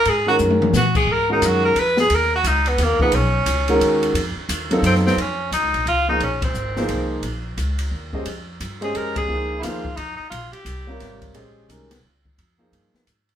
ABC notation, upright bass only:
X:1
M:3/4
L:1/8
Q:"Swing" 1/4=175
K:G#dor
V:1 name="Upright bass" clef=bass
G,,2 F,,2 A,,2 | G,,2 F,,2 E,,2 | D,,2 C,,2 D,, z | B,,,2 C,,2 D,,2 |
=F,, z _E,,2 _G,,2 | [K:Bbdor] F,,2 (3E,, D,, B,,, D,,2 | B,,,2 A,,,2 C,,2 | B,,,2 D,,2 E,,2 |
F,,2 G,,2 F,,2 | D,,2 E,,2 F,, z | B,,, z C,,2 A,,,2 | B,,,2 C,,2 D,,2 |
F,,2 G,, z A,,2 |]